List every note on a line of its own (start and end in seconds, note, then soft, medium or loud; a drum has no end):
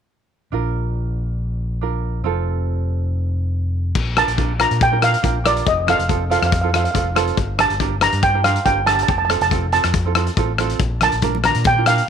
0.52 2.21 A#1 medium
0.52 1.79 D4 medium
0.52 1.79 F4 medium
0.52 1.80 A#4 medium
1.81 2.23 D4 soft
1.81 2.24 F4 soft
1.81 2.25 A#4 soft
2.24 3.92 F1 medium
2.24 3.92 C4 medium
2.24 3.93 F4 medium
2.24 3.93 A4 medium
3.95 4.22 A#1 medium
3.95 kick medium
3.95 crash medium
4.16 4.30 D4 medium
4.16 4.31 F4 medium
4.16 4.31 A#4 medium
4.16 4.62 A5 medium
4.16 cross-stick medium
4.16 closed hi-hat medium
4.28 4.63 A#1 medium
4.28 closed hi-hat medium
4.37 4.51 D4 medium
4.37 4.52 F4 medium
4.37 4.52 A#4 medium
4.37 kick medium
4.37 closed hi-hat medium
4.59 4.79 D4 medium
4.59 4.79 F4 medium
4.59 4.79 A#4 medium
4.59 4.83 A#5 medium
4.59 cross-stick medium
4.59 closed hi-hat medium
4.71 5.14 A#2 medium
4.71 closed hi-hat soft
4.81 5.04 G5 medium
4.81 kick loud
4.81 closed hi-hat medium
4.92 4.98 D4 medium
4.92 4.99 F4 medium
4.92 4.99 A#4 medium
5.01 5.15 D4 medium
5.01 5.15 F4 medium
5.01 5.16 A#4 medium
5.01 5.47 F5 medium
5.01 cross-stick medium
5.01 closed hi-hat medium
5.14 closed hi-hat medium
5.22 5.58 A#1 medium
5.22 5.37 D4 medium
5.22 5.37 F4 medium
5.22 5.37 A#4 medium
5.22 kick medium
5.22 closed hi-hat medium
5.44 5.66 D4 medium
5.44 5.67 F4 medium
5.44 5.67 A#4 medium
5.44 5.68 D5 medium
5.44 cross-stick medium
5.44 closed hi-hat medium
5.57 closed hi-hat soft
5.67 5.93 F1 medium
5.67 5.87 D#5 medium
5.67 kick medium
5.67 closed hi-hat medium
5.87 6.01 C4 medium
5.87 6.01 F4 soft
5.87 6.02 A4 medium
5.87 6.29 F5 medium
5.87 cross-stick medium
5.87 closed hi-hat medium
5.99 6.34 F1 medium
5.99 closed hi-hat medium
6.08 6.22 C4 medium
6.08 6.23 F4 medium
6.08 6.23 A4 medium
6.08 kick medium
6.08 closed hi-hat medium
6.30 6.50 C4 medium
6.30 6.50 F4 medium
6.30 6.50 A4 medium
6.30 6.38 F5 medium
6.30 closed hi-hat medium
6.39 6.85 F2 medium
6.39 6.45 F5 soft
6.39 cross-stick medium
6.39 closed hi-hat soft
6.46 6.52 F5 medium
6.52 6.60 F5 soft
6.52 kick loud
6.52 closed hi-hat medium
6.61 6.69 C4 medium
6.61 6.70 F4 medium
6.61 6.70 A4 medium
6.61 6.68 F5 medium
6.69 6.75 F5 soft
6.73 6.87 C4 medium
6.73 6.87 F4 medium
6.73 6.87 A4 medium
6.73 6.83 F5 medium
6.73 cross-stick medium
6.73 closed hi-hat medium
6.84 6.90 F5 soft
6.84 closed hi-hat medium
6.91 7.29 F1 medium
6.91 7.08 C4 medium
6.91 7.08 F4 medium
6.91 7.08 A4 medium
6.91 6.97 F5 soft
6.91 kick medium
6.95 7.06 F5 soft
6.95 closed hi-hat medium
7.15 7.37 C4 medium
7.15 7.37 F4 medium
7.15 7.38 A4 medium
7.15 cross-stick medium
7.15 closed hi-hat medium
7.28 closed hi-hat soft
7.37 7.64 G1 medium
7.37 kick medium
7.37 closed hi-hat soft
7.58 7.72 D4 medium
7.58 7.73 G4 medium
7.58 7.73 A#4 medium
7.58 8.04 A5 medium
7.58 cross-stick medium
7.58 closed hi-hat medium
7.70 8.05 G1 medium
7.70 closed hi-hat soft
7.80 7.94 D4 medium
7.80 7.94 G4 medium
7.80 7.95 A#4 medium
7.80 kick medium
7.80 closed hi-hat medium
8.01 8.21 D4 medium
8.01 8.21 G4 soft
8.01 8.22 A#4 medium
8.01 8.24 A#5 medium
8.01 cross-stick medium
8.01 closed hi-hat medium
8.13 8.56 G2 medium
8.13 closed hi-hat medium
8.23 8.45 G5 medium
8.23 kick loud
8.23 closed hi-hat medium
8.34 8.40 D4 medium
8.34 8.41 G4 soft
8.34 8.41 A#4 medium
8.44 8.58 D4 medium
8.44 8.58 G4 medium
8.44 8.58 A#4 medium
8.44 8.64 F5 medium
8.44 cross-stick medium
8.44 closed hi-hat medium
8.56 closed hi-hat medium
8.65 9.00 G1 medium
8.65 8.79 D4 medium
8.65 8.79 G4 medium
8.65 8.79 A#4 medium
8.65 8.86 G5 medium
8.65 kick medium
8.65 closed hi-hat medium
8.86 9.08 D4 medium
8.86 9.08 G4 medium
8.86 9.09 A#4 medium
8.86 8.94 A5 medium
8.86 cross-stick medium
8.86 closed hi-hat medium
8.95 9.02 A5 medium
8.95 closed hi-hat medium
9.03 9.09 A5 medium
9.08 9.35 F1 medium
9.08 9.17 A5 medium
9.08 kick loud
9.08 closed hi-hat soft
9.18 9.24 A5 medium
9.25 9.43 C4 medium
9.25 9.33 A5 medium
9.29 9.43 F4 medium
9.29 9.43 A4 medium
9.29 cross-stick medium
9.29 closed hi-hat medium
9.41 9.76 F1 medium
9.41 9.72 A5 medium
9.41 closed hi-hat medium
9.51 9.65 C4 medium
9.51 9.65 F4 medium
9.51 9.65 A4 medium
9.51 kick medium
9.51 closed hi-hat medium
9.72 9.92 C4 medium
9.72 9.92 F4 soft
9.72 9.93 A4 medium
9.72 10.13 A5 medium
9.72 closed hi-hat medium
9.84 10.27 F2 medium
9.84 cross-stick medium
9.84 closed hi-hat medium
9.94 kick medium
9.94 closed hi-hat medium
10.05 10.12 C4 medium
10.05 10.12 F4 soft
10.05 10.12 A4 medium
10.15 10.29 C4 medium
10.15 10.29 F4 medium
10.15 10.30 A4 medium
10.15 cross-stick medium
10.15 closed hi-hat medium
10.27 closed hi-hat soft
10.37 10.72 A1 medium
10.37 10.51 C4 medium
10.37 10.51 F4 medium
10.37 10.51 A4 medium
10.37 kick medium
10.37 closed hi-hat medium
10.58 10.80 C4 medium
10.58 10.80 F4 medium
10.58 10.81 A4 medium
10.58 cross-stick medium
10.58 closed hi-hat medium
10.70 closed hi-hat medium
10.79 11.06 A#1 medium
10.79 kick medium
10.79 closed hi-hat medium
11.01 11.15 D4 medium
11.01 11.15 F4 medium
11.01 11.15 A#4 medium
11.01 11.46 A5 medium
11.01 cross-stick medium
11.01 closed hi-hat medium
11.01 low conga medium
11.12 11.47 A#1 medium
11.12 closed hi-hat medium
11.22 11.36 D4 medium
11.22 11.36 F4 soft
11.22 11.37 A#4 medium
11.22 kick medium
11.22 closed hi-hat medium
11.22 high conga soft
11.35 high conga medium
11.44 11.64 D4 medium
11.44 11.64 F4 medium
11.44 11.65 A#4 medium
11.44 11.67 A#5 medium
11.44 cross-stick medium
11.44 closed hi-hat medium
11.44 low conga medium
11.55 11.98 A#2 medium
11.55 closed hi-hat medium
11.64 11.86 G5 medium
11.64 kick loud
11.64 closed hi-hat medium
11.64 low conga medium
11.78 11.83 D4 medium
11.78 11.84 F4 medium
11.78 11.84 A#4 medium
11.86 12.01 D4 medium
11.86 12.01 F4 medium
11.86 12.01 A#4 medium
11.86 12.09 F5 medium
11.86 cross-stick medium
11.86 closed hi-hat medium
11.98 closed hi-hat soft